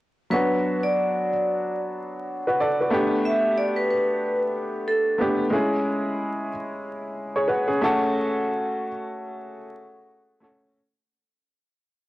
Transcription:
0.30 F#3 B3 D4 F#4 B4
0.83 D5
2.47 F#4 B4
2.60 A4 D5
2.80 F#4 B4
2.90 A3 B3 D4 G4
3.25 E5
3.58 D5
3.76 B4
3.90 B4
4.88 A4
5.18 A3 B3 D4 G4
5.50 G#3 C#4 E4 G#4
7.36 G#4 C#5
7.48 F#4 B4
7.68 C#4 G#4
7.81 A3 C#4 F#4 A4
10.40 A3 C#4 F#4 A4

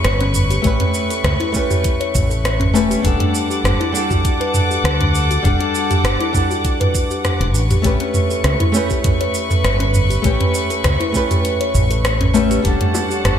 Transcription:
Already playing: A3 C#4 G4 B4 C#6
0.05 G1, cross-stick, closed hi-hat, shaker
0.21 C#4, closed hi-hat
0.34 mid tom, shaker
0.51 G4, closed hi-hat, shaker
0.62 A1 A3 C#4 G4, kick, closed hi-hat, shaker
0.67 B4
0.80 C#4, closed hi-hat, mid tom
0.94 shaker
1.10 A4, closed hi-hat, shaker
1.24 C#2, cross-stick, closed hi-hat, mid tom, shaker
1.40 E4, closed hi-hat
1.52 A3 C#4 G4, kick, shaker
1.57 B4
1.70 G4, mid tom, shaker
1.84 kick, closed hi-hat, shaker
2.00 C#5, closed hi-hat
2.15 A1, kick, mid tom, shaker
2.30 A4, shaker
2.45 cross-stick, closed hi-hat, shaker
2.60 C#4, closed hi-hat, mid tom
2.74 E1 A3 C#4 G4 B4, shaker
2.90 G4, closed hi-hat, shaker
3.02 E1 G3 D4 A4 F#5 D6, kick, closed hi-hat, shaker
3.06 A4
3.20 D4, closed hi-hat, mid tom
3.35 shaker
3.50 G4, shaker
3.64 G1, cross-stick, closed hi-hat, mid tom, shaker
3.80 E4, closed hi-hat
3.92 G3 D4 F#5, shaker
3.97 A4
4.10 F#4, kick, mid tom, shaker
4.25 kick, closed hi-hat, shaker
4.41 B4, closed hi-hat
4.54 mid tom, shaker
4.71 G4, shaker
4.84 D2, cross-stick, closed hi-hat, shaker
5.01 D4, closed hi-hat, mid tom
5.15 shaker
5.31 F#4, closed hi-hat, shaker
5.43 E1 G3 D4 F#5, kick, closed hi-hat, mid tom, shaker
5.47 A4
5.60 D4, closed hi-hat
5.75 shaker
5.90 G4, closed hi-hat, mid tom, shaker
6.04 G1, cross-stick, closed hi-hat, shaker
6.20 E4, closed hi-hat
6.33 G3 D4 F#5, kick, mid tom, shaker
6.37 A4
6.51 F#4, shaker
6.65 kick, closed hi-hat, shaker
6.80 B4, closed hi-hat, mid tom
6.95 kick, shaker
7.11 G4, shaker
7.25 cross-stick, closed hi-hat, mid tom, shaker
7.40 E1 D4, closed hi-hat
7.54 A1 B4 C#6, shaker
7.71 G4, closed hi-hat, mid tom, shaker
7.82 A1 A3 C#4 G4, kick, closed hi-hat, shaker
7.86 B4
8.00 C#4, closed hi-hat
8.14 mid tom, shaker
8.31 A4, shaker
8.44 C#2, cross-stick, closed hi-hat, shaker
8.60 E4, closed hi-hat, mid tom
8.72 A3 C#4 G4, shaker
8.77 B4
8.90 G4, kick, shaker
9.04 kick, closed hi-hat, mid tom, shaker
9.21 C#5, closed hi-hat
9.35 shaker
9.50 A4, mid tom, shaker
9.64 G1, cross-stick, closed hi-hat, shaker
9.80 C#4, closed hi-hat
9.94 mid tom, shaker
10.10 G4, closed hi-hat, shaker
10.22 A1 A3 C#4 G4, kick, closed hi-hat, shaker
10.27 B4
10.40 C#4, closed hi-hat, mid tom
10.55 shaker
10.70 A4, closed hi-hat, shaker
10.84 C#2, cross-stick, closed hi-hat, mid tom, shaker
11.00 E4, closed hi-hat
11.12 A3 C#4 G4, kick, shaker
11.17 B4
11.31 G4, closed hi-hat, mid tom, shaker
11.45 closed hi-hat, shaker
11.61 C#5, closed hi-hat
11.74 A1, mid tom, shaker
11.91 A4, closed hi-hat, shaker
12.05 cross-stick, closed hi-hat, shaker
12.21 C#4, closed hi-hat, mid tom
12.34 A3 C#4 G4 B4, shaker
12.51 G4, closed hi-hat, shaker
12.62 E1 G3 D4 A4 C#5 F#5 A5 C#6, kick, closed hi-hat, shaker
12.67 A4
12.81 D4, closed hi-hat, mid tom
12.95 high bongo, shaker
13.10 G4, shaker
13.25 G1, cross-stick, closed hi-hat, mid tom, shaker

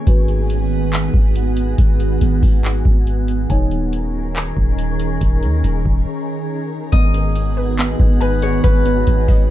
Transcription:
Already playing: D#3 G#4 G#5
0.07 G#1 B3 F#4 B4, kick, closed hi-hat
0.28 closed hi-hat
0.50 closed hi-hat
0.93 clap, closed hi-hat
1.14 G#1, kick
1.36 closed hi-hat
1.57 closed hi-hat
1.78 G#1, kick, closed hi-hat
2.00 closed hi-hat
2.21 G#1, closed hi-hat
2.43 G#1, kick, open hi-hat
2.64 clap, closed hi-hat
2.85 G#1, kick
3.07 closed hi-hat
3.28 closed hi-hat
3.50 D#1 D#3 C#4 D#4 G#4 A#4 C#5 G#5, kick, closed hi-hat
3.71 closed hi-hat
3.93 closed hi-hat
4.36 clap, closed hi-hat
4.57 D#1, kick
4.78 closed hi-hat
5.00 closed hi-hat
5.21 D#1, kick, closed hi-hat
5.43 D#2, closed hi-hat
5.64 D#1, closed hi-hat
5.85 D#1, kick
6.92 G#1 D#3 B3 F#4 G#4 D#5, kick, closed hi-hat
7.14 B3, closed hi-hat
7.36 closed hi-hat
7.57 B4
7.78 B3, clap, closed hi-hat
7.99 G#1 B3, kick
8.21 B4 G#5, closed hi-hat
8.42 G#4 C#5, closed hi-hat
8.64 G#1 B3 B4, kick, closed hi-hat
8.85 B3, closed hi-hat
9.07 G#1, closed hi-hat
9.28 G#1 D#5, kick, open hi-hat

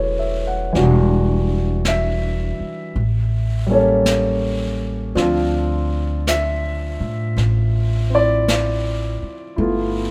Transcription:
Already playing: E1 C#3 F#3 A3 B3 E4 F#4 G#4 A4 B4 C#5 D5
0.19 E5
0.47 F#5
0.73 E1 E3 G3 D4, brush sweep, snare
0.77 F#4
1.85 E5, brush sweep, snare, hi-hat pedal
2.60 muted upright bass stroke
2.96 A1, brush sweep
3.67 G3 A#3 C#4
3.72 A4 C#5
4.06 brush sweep, snare, hi-hat pedal
5.15 D2 F3 C4 D4 F4, brush sweep, snare
6.27 E5, brush sweep, snare, hi-hat pedal
7.00 A2
7.37 A1, brush sweep, snare
8.10 C4 E4
8.15 D5
8.48 brush sweep, snare, hi-hat pedal
9.22 muted upright bass stroke
9.56 G1 A3 B3 E4, brush sweep
9.61 F4

